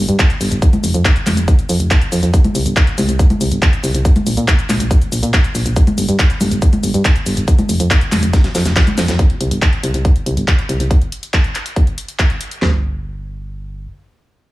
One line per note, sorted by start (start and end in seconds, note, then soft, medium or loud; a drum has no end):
0.09 0.17 G2 medium
0.09 closed hi-hat medium
0.09 shaker soft
0.19 kick loud
0.19 clap loud
0.19 closed hi-hat soft
0.19 shaker soft
0.30 closed hi-hat soft
0.30 shaker soft
0.41 0.49 G1 loud
0.41 open hi-hat loud
0.41 shaker medium
0.51 0.60 G1 medium
0.51 closed hi-hat medium
0.51 shaker soft
0.62 kick loud
0.62 closed hi-hat soft
0.62 shaker soft
0.73 closed hi-hat soft
0.73 high conga medium
0.73 shaker soft
0.84 0.92 F1 medium
0.84 open hi-hat loud
0.84 shaker medium
0.94 1.03 F2 medium
0.94 closed hi-hat medium
0.94 shaker soft
1.05 kick loud
1.05 clap loud
1.05 closed hi-hat medium
1.05 shaker soft
1.16 closed hi-hat soft
1.16 shaker soft
1.26 1.35 F1 loud
1.26 clap medium
1.26 open hi-hat loud
1.26 high conga medium
1.26 shaker medium
1.37 1.46 F1 medium
1.37 closed hi-hat medium
1.37 shaker soft
1.48 kick loud
1.48 closed hi-hat medium
1.48 shaker soft
1.59 closed hi-hat soft
1.59 shaker soft
1.69 1.78 F2 loud
1.69 open hi-hat loud
1.69 shaker medium
1.80 1.89 F1 medium
1.80 closed hi-hat medium
1.80 shaker soft
1.91 kick loud
1.91 clap loud
1.91 closed hi-hat medium
1.91 shaker soft
2.02 closed hi-hat soft
2.02 shaker soft
2.12 2.21 F2 medium
2.12 open hi-hat loud
2.12 shaker medium
2.23 2.31 F2 medium
2.23 closed hi-hat medium
2.23 shaker soft
2.34 kick loud
2.34 closed hi-hat medium
2.34 shaker soft
2.44 closed hi-hat soft
2.44 high conga medium
2.44 shaker soft
2.55 2.64 C2 loud
2.55 open hi-hat loud
2.55 shaker medium
2.66 2.74 G1 medium
2.66 closed hi-hat medium
2.66 shaker soft
2.76 kick loud
2.76 clap loud
2.76 closed hi-hat medium
2.76 shaker soft
2.87 closed hi-hat soft
2.87 shaker soft
2.98 3.06 C2 loud
2.98 open hi-hat loud
2.98 high conga medium
2.98 shaker medium
3.09 3.17 C2 medium
3.09 closed hi-hat medium
3.09 shaker soft
3.19 kick loud
3.19 closed hi-hat medium
3.19 shaker soft
3.30 closed hi-hat soft
3.30 high conga medium
3.30 shaker soft
3.41 3.49 C2 medium
3.41 open hi-hat loud
3.41 shaker medium
3.52 3.60 G1 medium
3.52 closed hi-hat medium
3.52 shaker soft
3.62 kick loud
3.62 clap loud
3.62 closed hi-hat medium
3.62 shaker soft
3.73 closed hi-hat soft
3.73 shaker soft
3.84 3.92 C2 loud
3.84 open hi-hat medium
3.84 shaker medium
3.94 4.03 C2 medium
3.94 closed hi-hat medium
3.94 shaker soft
4.05 kick loud
4.05 closed hi-hat medium
4.05 shaker soft
4.16 closed hi-hat soft
4.16 high conga medium
4.16 shaker soft
4.26 4.35 A#1 loud
4.26 open hi-hat loud
4.26 shaker medium
4.37 4.46 A#2 medium
4.37 closed hi-hat medium
4.37 shaker soft
4.48 kick loud
4.48 clap loud
4.48 closed hi-hat medium
4.48 shaker soft
4.59 closed hi-hat soft
4.59 shaker soft
4.69 4.78 A#1 loud
4.69 clap medium
4.69 open hi-hat medium
4.69 high conga medium
4.69 shaker medium
4.80 4.89 A#1 medium
4.80 closed hi-hat medium
4.80 shaker soft
4.91 kick loud
4.91 closed hi-hat medium
4.91 shaker soft
5.02 closed hi-hat soft
5.02 shaker soft
5.12 5.21 A#1 medium
5.12 open hi-hat loud
5.12 shaker medium
5.23 5.31 A#2 medium
5.23 closed hi-hat medium
5.23 shaker soft
5.33 kick loud
5.33 clap loud
5.33 closed hi-hat medium
5.33 shaker soft
5.44 closed hi-hat soft
5.44 shaker soft
5.55 5.63 A#1 loud
5.55 open hi-hat medium
5.55 shaker medium
5.66 5.74 A#1 medium
5.66 closed hi-hat medium
5.66 shaker soft
5.76 kick loud
5.76 closed hi-hat medium
5.76 shaker soft
5.87 closed hi-hat soft
5.87 high conga medium
5.87 shaker soft
5.98 6.06 G1 loud
5.98 open hi-hat loud
5.98 shaker medium
6.09 6.17 G2 medium
6.09 closed hi-hat medium
6.09 shaker soft
6.19 kick loud
6.19 clap loud
6.19 closed hi-hat medium
6.19 shaker soft
6.30 closed hi-hat soft
6.30 shaker soft
6.41 6.49 G1 loud
6.41 open hi-hat medium
6.41 high conga medium
6.41 shaker medium
6.51 6.60 G1 medium
6.51 closed hi-hat medium
6.51 shaker soft
6.62 kick loud
6.62 closed hi-hat medium
6.62 shaker soft
6.73 closed hi-hat soft
6.73 high conga medium
6.73 shaker soft
6.83 6.92 G1 medium
6.83 open hi-hat loud
6.83 shaker medium
6.94 7.03 G2 medium
6.94 closed hi-hat medium
6.94 shaker soft
7.05 kick loud
7.05 clap loud
7.05 closed hi-hat medium
7.05 shaker soft
7.16 closed hi-hat soft
7.16 shaker soft
7.26 7.35 G1 loud
7.26 open hi-hat medium
7.26 shaker medium
7.37 7.46 G1 medium
7.37 closed hi-hat medium
7.37 shaker soft
7.48 kick loud
7.48 closed hi-hat medium
7.48 shaker soft
7.59 closed hi-hat soft
7.59 high conga medium
7.59 shaker soft
7.69 7.78 F1 loud
7.69 open hi-hat loud
7.69 shaker medium
7.80 7.89 F2 medium
7.80 closed hi-hat medium
7.80 shaker soft
7.91 kick loud
7.91 clap loud
7.91 closed hi-hat medium
7.91 shaker soft
8.01 closed hi-hat soft
8.01 shaker soft
8.12 8.21 F1 loud
8.12 clap medium
8.12 open hi-hat medium
8.12 high conga medium
8.12 shaker medium
8.23 8.31 F1 medium
8.23 closed hi-hat medium
8.23 shaker soft
8.33 kick loud
8.33 snare medium
8.33 closed hi-hat medium
8.33 shaker soft
8.44 snare medium
8.44 closed hi-hat soft
8.44 shaker soft
8.55 8.63 F2 medium
8.55 snare medium
8.55 open hi-hat loud
8.55 shaker medium
8.66 8.74 F1 medium
8.66 snare medium
8.66 closed hi-hat medium
8.66 shaker soft
8.76 kick loud
8.76 snare medium
8.76 clap loud
8.76 closed hi-hat medium
8.76 shaker soft
8.87 closed hi-hat soft
8.87 high conga medium
8.87 shaker soft
8.98 9.06 F2 medium
8.98 snare loud
8.98 open hi-hat medium
8.98 shaker medium
9.08 9.17 F2 medium
9.08 snare medium
9.08 closed hi-hat medium
9.08 shaker soft
9.19 kick loud
9.19 closed hi-hat medium
9.30 closed hi-hat soft
9.41 9.49 C2 medium
9.41 closed hi-hat loud
9.51 9.60 G1 medium
9.51 closed hi-hat medium
9.62 kick loud
9.62 clap loud
9.62 closed hi-hat medium
9.73 closed hi-hat soft
9.83 9.92 C2 medium
9.83 closed hi-hat medium
9.94 10.03 C2 medium
9.94 closed hi-hat medium
10.05 kick loud
10.05 closed hi-hat medium
10.16 closed hi-hat soft
10.26 10.35 C2 medium
10.26 closed hi-hat medium
10.37 10.46 G1 medium
10.37 closed hi-hat medium
10.48 kick loud
10.48 clap loud
10.48 closed hi-hat medium
10.59 closed hi-hat soft
10.69 10.78 C2 medium
10.69 closed hi-hat medium
10.80 10.89 C2 medium
10.80 closed hi-hat medium
10.91 kick loud
10.91 closed hi-hat soft
11.02 closed hi-hat soft
11.12 closed hi-hat medium
11.23 closed hi-hat medium
11.33 kick loud
11.33 clap loud
11.33 closed hi-hat medium
11.44 closed hi-hat soft
11.55 clap medium
11.55 closed hi-hat medium
11.66 closed hi-hat soft
11.76 kick loud
11.76 closed hi-hat soft
11.87 closed hi-hat soft
11.98 closed hi-hat medium
12.08 closed hi-hat medium
12.19 kick loud
12.19 clap loud
12.19 closed hi-hat soft
12.30 closed hi-hat soft
12.41 closed hi-hat medium
12.51 closed hi-hat soft
12.62 13.87 G1 medium
12.62 snare loud
12.62 clap medium
12.62 floor tom loud